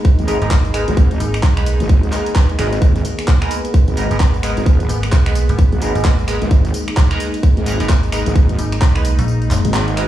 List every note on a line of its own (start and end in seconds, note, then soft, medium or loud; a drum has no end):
0.00 10.08 G#3 medium
0.00 10.08 A#3 medium
0.00 2.81 D#4 medium
0.05 kick loud
0.05 tambourine soft
0.19 0.40 G#1 loud
0.19 closed hi-hat soft
0.19 tambourine soft
0.28 0.35 G#3 medium
0.28 0.35 B3 medium
0.28 0.35 D#4 medium
0.28 0.35 A#4 loud
0.28 open hi-hat loud
0.28 tambourine medium
0.42 0.86 G#1 medium
0.42 0.46 G#3 medium
0.42 0.46 B3 medium
0.42 0.46 D#4 medium
0.42 0.46 A#4 medium
0.42 closed hi-hat medium
0.42 tambourine soft
0.51 kick loud
0.51 clap loud
0.51 tambourine soft
0.65 closed hi-hat soft
0.65 tambourine soft
0.74 0.81 G#3 medium
0.74 0.81 B3 medium
0.74 0.81 D#4 medium
0.74 0.81 A#4 loud
0.74 finger snap medium
0.74 open hi-hat loud
0.74 tambourine medium
0.88 1.19 G#1 loud
0.88 closed hi-hat medium
0.88 tambourine soft
0.97 kick loud
0.97 tambourine soft
1.11 closed hi-hat medium
1.11 tambourine soft
1.20 1.42 G#1 medium
1.20 open hi-hat loud
1.20 tambourine medium
1.34 finger snap medium
1.34 closed hi-hat medium
1.34 tambourine soft
1.43 1.78 B1 loud
1.43 kick loud
1.43 clap loud
1.43 tambourine soft
1.57 1.62 G#3 medium
1.57 1.62 B3 medium
1.57 1.62 D#4 medium
1.57 1.62 B4 medium
1.57 finger snap medium
1.57 closed hi-hat medium
1.57 tambourine soft
1.66 open hi-hat loud
1.66 tambourine medium
1.80 2.11 G#1 loud
1.80 closed hi-hat medium
1.80 tambourine soft
1.89 kick loud
1.89 tambourine soft
2.03 closed hi-hat soft
2.03 tambourine soft
2.12 2.33 G#3 medium
2.12 2.33 B3 medium
2.12 2.33 D#4 medium
2.12 2.33 A#4 medium
2.12 clap medium
2.12 open hi-hat loud
2.12 tambourine medium
2.26 closed hi-hat medium
2.26 tambourine soft
2.36 2.43 G#3 medium
2.36 2.43 B3 medium
2.36 2.43 D#4 medium
2.36 2.43 A#4 medium
2.36 kick loud
2.36 clap loud
2.36 tambourine soft
2.49 closed hi-hat soft
2.49 tambourine soft
2.59 2.80 G#1 loud
2.59 2.66 G#3 loud
2.59 2.66 B3 medium
2.59 2.66 D#4 medium
2.59 2.66 A#4 loud
2.59 finger snap medium
2.59 open hi-hat loud
2.59 tambourine medium
2.73 closed hi-hat medium
2.73 tambourine soft
2.82 3.03 G#1 loud
2.82 6.50 B3 medium
2.82 kick loud
2.82 tambourine soft
2.96 closed hi-hat medium
2.96 tambourine soft
3.05 open hi-hat loud
3.05 tambourine medium
3.19 finger snap medium
3.19 closed hi-hat medium
3.19 tambourine soft
3.28 3.40 B1 loud
3.28 kick loud
3.28 clap loud
3.28 tambourine soft
3.42 3.49 G#3 loud
3.42 3.49 B3 medium
3.42 3.49 D#4 medium
3.42 3.49 A#4 loud
3.42 finger snap medium
3.42 closed hi-hat medium
3.42 tambourine soft
3.51 open hi-hat loud
3.51 tambourine medium
3.65 closed hi-hat medium
3.65 tambourine soft
3.74 kick loud
3.74 tambourine soft
3.88 4.09 G#1 loud
3.88 closed hi-hat soft
3.88 tambourine soft
3.97 4.04 G#3 medium
3.97 4.04 B3 medium
3.97 4.04 D#4 medium
3.97 4.04 A#4 loud
3.97 open hi-hat loud
3.97 tambourine medium
4.11 4.55 G#1 medium
4.11 4.16 G#3 medium
4.11 4.16 B3 medium
4.11 4.16 D#4 medium
4.11 4.16 A#4 medium
4.11 closed hi-hat medium
4.11 tambourine soft
4.20 kick loud
4.20 clap loud
4.20 tambourine soft
4.34 closed hi-hat soft
4.34 tambourine soft
4.43 4.50 G#3 medium
4.43 4.50 B3 medium
4.43 4.50 D#4 medium
4.43 4.50 A#4 loud
4.43 finger snap medium
4.43 open hi-hat loud
4.43 tambourine medium
4.57 4.88 G#1 loud
4.57 closed hi-hat medium
4.57 tambourine soft
4.66 kick loud
4.66 tambourine soft
4.80 closed hi-hat medium
4.80 tambourine soft
4.89 5.11 G#1 medium
4.89 open hi-hat loud
4.89 tambourine medium
5.03 finger snap medium
5.03 closed hi-hat medium
5.03 tambourine soft
5.12 5.47 B1 loud
5.12 kick loud
5.12 clap loud
5.12 tambourine soft
5.26 5.31 G#3 medium
5.26 5.31 B3 medium
5.26 5.31 D#4 medium
5.26 5.31 B4 medium
5.26 finger snap medium
5.26 closed hi-hat medium
5.26 tambourine soft
5.35 open hi-hat loud
5.35 tambourine medium
5.49 5.70 G#1 loud
5.49 closed hi-hat medium
5.49 tambourine soft
5.59 kick loud
5.59 tambourine soft
5.72 5.93 G#1 loud
5.72 closed hi-hat soft
5.72 tambourine soft
5.82 6.03 G#3 medium
5.82 6.02 B3 medium
5.82 6.02 D#4 medium
5.82 6.02 A#4 medium
5.82 open hi-hat loud
5.82 tambourine medium
5.95 6.39 G#1 loud
5.95 closed hi-hat medium
5.95 tambourine soft
6.05 6.12 G#3 medium
6.05 6.12 B3 medium
6.05 6.12 D#4 medium
6.05 6.12 A#4 medium
6.05 kick loud
6.05 clap loud
6.05 tambourine soft
6.19 closed hi-hat soft
6.19 tambourine soft
6.28 6.35 G#3 loud
6.28 6.35 B3 medium
6.28 6.35 D#4 medium
6.28 6.35 A#4 loud
6.28 finger snap medium
6.28 open hi-hat loud
6.28 tambourine medium
6.42 6.49 G#1 medium
6.42 closed hi-hat medium
6.42 tambourine soft
6.51 6.72 G#1 medium
6.51 10.08 D#4 medium
6.51 kick loud
6.51 tambourine soft
6.65 closed hi-hat medium
6.65 tambourine soft
6.74 open hi-hat loud
6.74 tambourine medium
6.88 finger snap medium
6.88 closed hi-hat medium
6.88 tambourine soft
6.97 7.09 B1 loud
6.97 kick loud
6.97 clap loud
6.97 tambourine soft
7.11 7.19 G#3 loud
7.11 7.19 B3 medium
7.11 7.18 D#4 loud
7.11 7.18 A#4 loud
7.11 finger snap medium
7.11 closed hi-hat medium
7.11 tambourine soft
7.20 open hi-hat loud
7.20 tambourine medium
7.34 closed hi-hat medium
7.34 tambourine soft
7.43 kick loud
7.43 tambourine soft
7.57 7.78 G#1 loud
7.57 closed hi-hat soft
7.57 tambourine soft
7.66 7.74 G#3 medium
7.66 7.74 B3 medium
7.66 7.73 D#4 medium
7.66 7.73 A#4 loud
7.66 open hi-hat loud
7.66 tambourine medium
7.80 8.24 G#1 loud
7.80 7.85 G#3 medium
7.80 7.85 B3 medium
7.80 7.85 D#4 medium
7.80 7.85 A#4 medium
7.80 closed hi-hat medium
7.80 tambourine soft
7.89 kick loud
7.89 clap loud
7.89 tambourine soft
8.03 closed hi-hat soft
8.03 tambourine soft
8.12 8.20 G#3 medium
8.12 8.20 B3 medium
8.12 8.20 D#4 medium
8.12 8.20 A#4 loud
8.12 finger snap medium
8.12 open hi-hat loud
8.12 tambourine medium
8.26 8.57 G#1 loud
8.26 closed hi-hat medium
8.26 tambourine soft
8.36 kick loud
8.36 tambourine soft
8.49 closed hi-hat medium
8.49 tambourine soft
8.59 8.80 G#1 medium
8.59 open hi-hat loud
8.59 tambourine medium
8.72 finger snap medium
8.72 closed hi-hat medium
8.72 tambourine soft
8.82 9.16 B1 loud
8.82 kick loud
8.82 clap loud
8.82 tambourine soft
8.96 9.00 G#3 medium
8.96 9.00 B3 medium
8.96 9.00 D#4 medium
8.96 9.00 B4 medium
8.96 finger snap medium
8.96 closed hi-hat medium
8.96 tambourine soft
9.05 open hi-hat loud
9.05 tambourine medium
9.19 9.49 A#1 loud
9.19 closed hi-hat medium
9.19 tambourine soft
9.28 tambourine soft
9.42 closed hi-hat soft
9.42 tambourine soft
9.51 9.63 F#1 loud
9.51 clap medium
9.51 open hi-hat loud
9.51 tambourine medium
9.65 10.08 G#1 medium
9.65 closed hi-hat medium
9.65 tambourine soft
9.74 clap loud
9.74 tambourine soft
9.88 closed hi-hat soft
9.88 tambourine soft
9.97 10.08 G#3 medium
9.97 10.08 B3 medium
9.97 10.08 D#4 medium
9.97 10.08 A#4 loud
9.97 finger snap medium
9.97 open hi-hat loud
9.97 tambourine medium